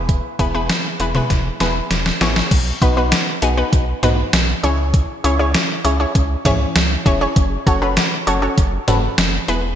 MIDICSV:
0, 0, Header, 1, 4, 480
1, 0, Start_track
1, 0, Tempo, 606061
1, 70, Time_signature, 4, 2, 24, 8
1, 7724, End_track
2, 0, Start_track
2, 0, Title_t, "Synth pluck"
2, 0, Program_c, 0, 84
2, 0, Note_on_c, 0, 59, 90
2, 0, Note_on_c, 0, 64, 83
2, 0, Note_on_c, 0, 68, 85
2, 0, Note_on_c, 0, 71, 99
2, 215, Note_off_c, 0, 59, 0
2, 215, Note_off_c, 0, 64, 0
2, 215, Note_off_c, 0, 68, 0
2, 215, Note_off_c, 0, 71, 0
2, 311, Note_on_c, 0, 64, 80
2, 311, Note_on_c, 0, 68, 80
2, 311, Note_on_c, 0, 71, 96
2, 312, Note_on_c, 0, 59, 88
2, 388, Note_off_c, 0, 59, 0
2, 388, Note_off_c, 0, 64, 0
2, 388, Note_off_c, 0, 68, 0
2, 388, Note_off_c, 0, 71, 0
2, 432, Note_on_c, 0, 59, 81
2, 432, Note_on_c, 0, 64, 76
2, 432, Note_on_c, 0, 68, 75
2, 432, Note_on_c, 0, 71, 90
2, 585, Note_off_c, 0, 59, 0
2, 585, Note_off_c, 0, 64, 0
2, 585, Note_off_c, 0, 68, 0
2, 585, Note_off_c, 0, 71, 0
2, 792, Note_on_c, 0, 64, 82
2, 793, Note_on_c, 0, 59, 85
2, 793, Note_on_c, 0, 68, 80
2, 793, Note_on_c, 0, 71, 93
2, 868, Note_off_c, 0, 59, 0
2, 868, Note_off_c, 0, 64, 0
2, 869, Note_off_c, 0, 68, 0
2, 869, Note_off_c, 0, 71, 0
2, 913, Note_on_c, 0, 59, 83
2, 913, Note_on_c, 0, 64, 72
2, 913, Note_on_c, 0, 68, 72
2, 913, Note_on_c, 0, 71, 86
2, 1065, Note_off_c, 0, 64, 0
2, 1065, Note_off_c, 0, 68, 0
2, 1065, Note_off_c, 0, 71, 0
2, 1066, Note_off_c, 0, 59, 0
2, 1271, Note_on_c, 0, 71, 98
2, 1272, Note_on_c, 0, 59, 86
2, 1272, Note_on_c, 0, 64, 80
2, 1272, Note_on_c, 0, 68, 79
2, 1424, Note_off_c, 0, 71, 0
2, 1425, Note_off_c, 0, 59, 0
2, 1425, Note_off_c, 0, 64, 0
2, 1425, Note_off_c, 0, 68, 0
2, 1752, Note_on_c, 0, 59, 88
2, 1752, Note_on_c, 0, 64, 81
2, 1752, Note_on_c, 0, 68, 80
2, 1752, Note_on_c, 0, 73, 98
2, 1905, Note_off_c, 0, 59, 0
2, 1905, Note_off_c, 0, 64, 0
2, 1905, Note_off_c, 0, 68, 0
2, 1905, Note_off_c, 0, 73, 0
2, 2231, Note_on_c, 0, 71, 95
2, 2232, Note_on_c, 0, 59, 89
2, 2232, Note_on_c, 0, 63, 83
2, 2232, Note_on_c, 0, 66, 82
2, 2308, Note_off_c, 0, 59, 0
2, 2308, Note_off_c, 0, 63, 0
2, 2308, Note_off_c, 0, 66, 0
2, 2308, Note_off_c, 0, 71, 0
2, 2352, Note_on_c, 0, 59, 80
2, 2352, Note_on_c, 0, 66, 73
2, 2352, Note_on_c, 0, 71, 89
2, 2353, Note_on_c, 0, 63, 76
2, 2505, Note_off_c, 0, 59, 0
2, 2505, Note_off_c, 0, 63, 0
2, 2505, Note_off_c, 0, 66, 0
2, 2505, Note_off_c, 0, 71, 0
2, 2711, Note_on_c, 0, 59, 88
2, 2711, Note_on_c, 0, 63, 81
2, 2711, Note_on_c, 0, 66, 83
2, 2712, Note_on_c, 0, 68, 100
2, 2788, Note_off_c, 0, 59, 0
2, 2788, Note_off_c, 0, 63, 0
2, 2788, Note_off_c, 0, 66, 0
2, 2788, Note_off_c, 0, 68, 0
2, 2831, Note_on_c, 0, 59, 83
2, 2831, Note_on_c, 0, 66, 75
2, 2831, Note_on_c, 0, 71, 88
2, 2832, Note_on_c, 0, 63, 74
2, 2984, Note_off_c, 0, 59, 0
2, 2985, Note_off_c, 0, 63, 0
2, 2985, Note_off_c, 0, 66, 0
2, 2985, Note_off_c, 0, 71, 0
2, 3191, Note_on_c, 0, 71, 99
2, 3192, Note_on_c, 0, 59, 90
2, 3192, Note_on_c, 0, 63, 83
2, 3192, Note_on_c, 0, 66, 80
2, 3345, Note_off_c, 0, 59, 0
2, 3345, Note_off_c, 0, 63, 0
2, 3345, Note_off_c, 0, 66, 0
2, 3345, Note_off_c, 0, 71, 0
2, 3671, Note_on_c, 0, 61, 92
2, 3671, Note_on_c, 0, 64, 88
2, 3671, Note_on_c, 0, 73, 104
2, 3672, Note_on_c, 0, 68, 86
2, 4055, Note_off_c, 0, 61, 0
2, 4055, Note_off_c, 0, 64, 0
2, 4055, Note_off_c, 0, 68, 0
2, 4055, Note_off_c, 0, 73, 0
2, 4152, Note_on_c, 0, 61, 92
2, 4152, Note_on_c, 0, 64, 82
2, 4152, Note_on_c, 0, 68, 80
2, 4152, Note_on_c, 0, 73, 98
2, 4228, Note_off_c, 0, 61, 0
2, 4228, Note_off_c, 0, 64, 0
2, 4228, Note_off_c, 0, 68, 0
2, 4228, Note_off_c, 0, 73, 0
2, 4272, Note_on_c, 0, 61, 85
2, 4272, Note_on_c, 0, 64, 77
2, 4272, Note_on_c, 0, 68, 78
2, 4272, Note_on_c, 0, 73, 92
2, 4425, Note_off_c, 0, 61, 0
2, 4425, Note_off_c, 0, 64, 0
2, 4425, Note_off_c, 0, 68, 0
2, 4425, Note_off_c, 0, 73, 0
2, 4629, Note_on_c, 0, 64, 83
2, 4630, Note_on_c, 0, 61, 92
2, 4630, Note_on_c, 0, 68, 81
2, 4630, Note_on_c, 0, 73, 95
2, 4707, Note_off_c, 0, 61, 0
2, 4707, Note_off_c, 0, 64, 0
2, 4707, Note_off_c, 0, 68, 0
2, 4707, Note_off_c, 0, 73, 0
2, 4751, Note_on_c, 0, 68, 72
2, 4751, Note_on_c, 0, 73, 90
2, 4752, Note_on_c, 0, 61, 81
2, 4752, Note_on_c, 0, 64, 75
2, 4904, Note_off_c, 0, 73, 0
2, 4905, Note_off_c, 0, 61, 0
2, 4905, Note_off_c, 0, 64, 0
2, 4905, Note_off_c, 0, 68, 0
2, 5112, Note_on_c, 0, 68, 80
2, 5113, Note_on_c, 0, 61, 88
2, 5113, Note_on_c, 0, 64, 83
2, 5113, Note_on_c, 0, 73, 98
2, 5265, Note_off_c, 0, 61, 0
2, 5265, Note_off_c, 0, 64, 0
2, 5265, Note_off_c, 0, 68, 0
2, 5265, Note_off_c, 0, 73, 0
2, 5590, Note_on_c, 0, 61, 86
2, 5590, Note_on_c, 0, 64, 81
2, 5590, Note_on_c, 0, 68, 78
2, 5590, Note_on_c, 0, 73, 100
2, 5667, Note_off_c, 0, 61, 0
2, 5667, Note_off_c, 0, 64, 0
2, 5667, Note_off_c, 0, 68, 0
2, 5667, Note_off_c, 0, 73, 0
2, 5712, Note_on_c, 0, 64, 73
2, 5712, Note_on_c, 0, 68, 73
2, 5712, Note_on_c, 0, 73, 90
2, 5713, Note_on_c, 0, 61, 80
2, 5831, Note_off_c, 0, 61, 0
2, 5831, Note_off_c, 0, 64, 0
2, 5831, Note_off_c, 0, 68, 0
2, 5831, Note_off_c, 0, 73, 0
2, 6071, Note_on_c, 0, 73, 98
2, 6072, Note_on_c, 0, 61, 89
2, 6072, Note_on_c, 0, 66, 81
2, 6072, Note_on_c, 0, 69, 81
2, 6148, Note_off_c, 0, 61, 0
2, 6148, Note_off_c, 0, 66, 0
2, 6148, Note_off_c, 0, 69, 0
2, 6148, Note_off_c, 0, 73, 0
2, 6192, Note_on_c, 0, 61, 83
2, 6192, Note_on_c, 0, 66, 75
2, 6192, Note_on_c, 0, 69, 74
2, 6193, Note_on_c, 0, 71, 90
2, 6345, Note_off_c, 0, 61, 0
2, 6345, Note_off_c, 0, 66, 0
2, 6345, Note_off_c, 0, 69, 0
2, 6345, Note_off_c, 0, 71, 0
2, 6550, Note_on_c, 0, 61, 91
2, 6550, Note_on_c, 0, 66, 85
2, 6550, Note_on_c, 0, 69, 81
2, 6550, Note_on_c, 0, 73, 99
2, 6627, Note_off_c, 0, 61, 0
2, 6627, Note_off_c, 0, 66, 0
2, 6627, Note_off_c, 0, 69, 0
2, 6627, Note_off_c, 0, 73, 0
2, 6669, Note_on_c, 0, 61, 81
2, 6670, Note_on_c, 0, 66, 77
2, 6670, Note_on_c, 0, 69, 75
2, 6670, Note_on_c, 0, 73, 88
2, 6824, Note_off_c, 0, 61, 0
2, 6824, Note_off_c, 0, 66, 0
2, 6824, Note_off_c, 0, 69, 0
2, 6824, Note_off_c, 0, 73, 0
2, 7031, Note_on_c, 0, 61, 89
2, 7031, Note_on_c, 0, 66, 80
2, 7031, Note_on_c, 0, 69, 83
2, 7031, Note_on_c, 0, 71, 98
2, 7184, Note_off_c, 0, 61, 0
2, 7184, Note_off_c, 0, 66, 0
2, 7184, Note_off_c, 0, 69, 0
2, 7184, Note_off_c, 0, 71, 0
2, 7511, Note_on_c, 0, 59, 94
2, 7511, Note_on_c, 0, 64, 84
2, 7511, Note_on_c, 0, 68, 88
2, 7511, Note_on_c, 0, 71, 101
2, 7724, Note_off_c, 0, 59, 0
2, 7724, Note_off_c, 0, 64, 0
2, 7724, Note_off_c, 0, 68, 0
2, 7724, Note_off_c, 0, 71, 0
2, 7724, End_track
3, 0, Start_track
3, 0, Title_t, "Analog synth bass"
3, 0, Program_c, 1, 38
3, 0, Note_on_c, 1, 28, 102
3, 167, Note_off_c, 1, 28, 0
3, 311, Note_on_c, 1, 28, 96
3, 563, Note_off_c, 1, 28, 0
3, 790, Note_on_c, 1, 28, 101
3, 958, Note_off_c, 1, 28, 0
3, 1031, Note_on_c, 1, 28, 115
3, 1199, Note_off_c, 1, 28, 0
3, 1270, Note_on_c, 1, 28, 99
3, 1438, Note_off_c, 1, 28, 0
3, 1510, Note_on_c, 1, 28, 109
3, 1678, Note_off_c, 1, 28, 0
3, 1750, Note_on_c, 1, 33, 97
3, 1918, Note_off_c, 1, 33, 0
3, 1990, Note_on_c, 1, 35, 105
3, 2158, Note_off_c, 1, 35, 0
3, 2230, Note_on_c, 1, 35, 98
3, 2482, Note_off_c, 1, 35, 0
3, 2712, Note_on_c, 1, 35, 104
3, 2879, Note_off_c, 1, 35, 0
3, 2952, Note_on_c, 1, 35, 110
3, 3119, Note_off_c, 1, 35, 0
3, 3191, Note_on_c, 1, 35, 104
3, 3359, Note_off_c, 1, 35, 0
3, 3431, Note_on_c, 1, 35, 109
3, 3599, Note_off_c, 1, 35, 0
3, 3672, Note_on_c, 1, 37, 104
3, 4007, Note_off_c, 1, 37, 0
3, 4152, Note_on_c, 1, 37, 102
3, 4403, Note_off_c, 1, 37, 0
3, 4631, Note_on_c, 1, 37, 99
3, 4798, Note_off_c, 1, 37, 0
3, 4872, Note_on_c, 1, 37, 99
3, 5039, Note_off_c, 1, 37, 0
3, 5109, Note_on_c, 1, 37, 106
3, 5277, Note_off_c, 1, 37, 0
3, 5353, Note_on_c, 1, 37, 109
3, 5520, Note_off_c, 1, 37, 0
3, 5589, Note_on_c, 1, 28, 92
3, 5757, Note_off_c, 1, 28, 0
3, 5831, Note_on_c, 1, 30, 104
3, 5999, Note_off_c, 1, 30, 0
3, 6072, Note_on_c, 1, 30, 93
3, 6323, Note_off_c, 1, 30, 0
3, 6552, Note_on_c, 1, 30, 93
3, 6719, Note_off_c, 1, 30, 0
3, 6792, Note_on_c, 1, 30, 113
3, 6960, Note_off_c, 1, 30, 0
3, 7031, Note_on_c, 1, 30, 98
3, 7199, Note_off_c, 1, 30, 0
3, 7271, Note_on_c, 1, 30, 111
3, 7438, Note_off_c, 1, 30, 0
3, 7511, Note_on_c, 1, 28, 98
3, 7724, Note_off_c, 1, 28, 0
3, 7724, End_track
4, 0, Start_track
4, 0, Title_t, "Drums"
4, 69, Note_on_c, 9, 42, 76
4, 70, Note_on_c, 9, 36, 108
4, 149, Note_off_c, 9, 36, 0
4, 149, Note_off_c, 9, 42, 0
4, 310, Note_on_c, 9, 36, 90
4, 312, Note_on_c, 9, 42, 72
4, 390, Note_off_c, 9, 36, 0
4, 391, Note_off_c, 9, 42, 0
4, 550, Note_on_c, 9, 42, 77
4, 551, Note_on_c, 9, 38, 115
4, 629, Note_off_c, 9, 42, 0
4, 630, Note_off_c, 9, 38, 0
4, 789, Note_on_c, 9, 42, 92
4, 869, Note_off_c, 9, 42, 0
4, 908, Note_on_c, 9, 47, 93
4, 988, Note_off_c, 9, 47, 0
4, 1030, Note_on_c, 9, 38, 57
4, 1031, Note_on_c, 9, 36, 94
4, 1031, Note_on_c, 9, 42, 68
4, 1109, Note_off_c, 9, 38, 0
4, 1110, Note_off_c, 9, 36, 0
4, 1110, Note_off_c, 9, 42, 0
4, 1270, Note_on_c, 9, 38, 74
4, 1270, Note_on_c, 9, 42, 81
4, 1349, Note_off_c, 9, 38, 0
4, 1349, Note_off_c, 9, 42, 0
4, 1510, Note_on_c, 9, 38, 90
4, 1511, Note_on_c, 9, 42, 79
4, 1589, Note_off_c, 9, 38, 0
4, 1590, Note_off_c, 9, 42, 0
4, 1630, Note_on_c, 9, 38, 78
4, 1710, Note_off_c, 9, 38, 0
4, 1751, Note_on_c, 9, 38, 106
4, 1751, Note_on_c, 9, 42, 67
4, 1830, Note_off_c, 9, 38, 0
4, 1830, Note_off_c, 9, 42, 0
4, 1871, Note_on_c, 9, 38, 87
4, 1950, Note_off_c, 9, 38, 0
4, 1990, Note_on_c, 9, 36, 116
4, 1990, Note_on_c, 9, 42, 80
4, 1990, Note_on_c, 9, 49, 105
4, 2070, Note_off_c, 9, 36, 0
4, 2070, Note_off_c, 9, 42, 0
4, 2070, Note_off_c, 9, 49, 0
4, 2231, Note_on_c, 9, 36, 95
4, 2232, Note_on_c, 9, 42, 76
4, 2310, Note_off_c, 9, 36, 0
4, 2311, Note_off_c, 9, 42, 0
4, 2469, Note_on_c, 9, 42, 78
4, 2471, Note_on_c, 9, 38, 117
4, 2549, Note_off_c, 9, 42, 0
4, 2550, Note_off_c, 9, 38, 0
4, 2710, Note_on_c, 9, 42, 95
4, 2789, Note_off_c, 9, 42, 0
4, 2952, Note_on_c, 9, 36, 99
4, 2952, Note_on_c, 9, 42, 71
4, 3031, Note_off_c, 9, 36, 0
4, 3031, Note_off_c, 9, 42, 0
4, 3191, Note_on_c, 9, 42, 84
4, 3191, Note_on_c, 9, 45, 100
4, 3191, Note_on_c, 9, 56, 72
4, 3270, Note_off_c, 9, 45, 0
4, 3270, Note_off_c, 9, 56, 0
4, 3271, Note_off_c, 9, 42, 0
4, 3431, Note_on_c, 9, 38, 121
4, 3432, Note_on_c, 9, 42, 85
4, 3510, Note_off_c, 9, 38, 0
4, 3511, Note_off_c, 9, 42, 0
4, 3672, Note_on_c, 9, 42, 69
4, 3751, Note_off_c, 9, 42, 0
4, 3911, Note_on_c, 9, 36, 111
4, 3911, Note_on_c, 9, 42, 80
4, 3990, Note_off_c, 9, 36, 0
4, 3990, Note_off_c, 9, 42, 0
4, 4153, Note_on_c, 9, 42, 76
4, 4233, Note_off_c, 9, 42, 0
4, 4391, Note_on_c, 9, 42, 76
4, 4392, Note_on_c, 9, 38, 114
4, 4470, Note_off_c, 9, 42, 0
4, 4471, Note_off_c, 9, 38, 0
4, 4630, Note_on_c, 9, 42, 98
4, 4709, Note_off_c, 9, 42, 0
4, 4872, Note_on_c, 9, 36, 101
4, 4872, Note_on_c, 9, 42, 73
4, 4951, Note_off_c, 9, 36, 0
4, 4951, Note_off_c, 9, 42, 0
4, 5109, Note_on_c, 9, 36, 99
4, 5111, Note_on_c, 9, 42, 83
4, 5111, Note_on_c, 9, 45, 98
4, 5111, Note_on_c, 9, 56, 70
4, 5189, Note_off_c, 9, 36, 0
4, 5190, Note_off_c, 9, 45, 0
4, 5190, Note_off_c, 9, 56, 0
4, 5191, Note_off_c, 9, 42, 0
4, 5351, Note_on_c, 9, 38, 122
4, 5352, Note_on_c, 9, 42, 82
4, 5430, Note_off_c, 9, 38, 0
4, 5431, Note_off_c, 9, 42, 0
4, 5590, Note_on_c, 9, 36, 103
4, 5592, Note_on_c, 9, 42, 70
4, 5669, Note_off_c, 9, 36, 0
4, 5671, Note_off_c, 9, 42, 0
4, 5831, Note_on_c, 9, 36, 114
4, 5831, Note_on_c, 9, 42, 83
4, 5910, Note_off_c, 9, 36, 0
4, 5910, Note_off_c, 9, 42, 0
4, 6071, Note_on_c, 9, 36, 95
4, 6073, Note_on_c, 9, 42, 73
4, 6151, Note_off_c, 9, 36, 0
4, 6152, Note_off_c, 9, 42, 0
4, 6310, Note_on_c, 9, 42, 80
4, 6311, Note_on_c, 9, 38, 118
4, 6389, Note_off_c, 9, 42, 0
4, 6391, Note_off_c, 9, 38, 0
4, 6551, Note_on_c, 9, 42, 97
4, 6630, Note_off_c, 9, 42, 0
4, 6792, Note_on_c, 9, 36, 99
4, 6792, Note_on_c, 9, 42, 72
4, 6871, Note_off_c, 9, 36, 0
4, 6871, Note_off_c, 9, 42, 0
4, 7031, Note_on_c, 9, 42, 86
4, 7031, Note_on_c, 9, 45, 99
4, 7031, Note_on_c, 9, 56, 70
4, 7110, Note_off_c, 9, 45, 0
4, 7110, Note_off_c, 9, 56, 0
4, 7111, Note_off_c, 9, 42, 0
4, 7270, Note_on_c, 9, 38, 121
4, 7272, Note_on_c, 9, 42, 85
4, 7350, Note_off_c, 9, 38, 0
4, 7351, Note_off_c, 9, 42, 0
4, 7511, Note_on_c, 9, 42, 70
4, 7591, Note_off_c, 9, 42, 0
4, 7724, End_track
0, 0, End_of_file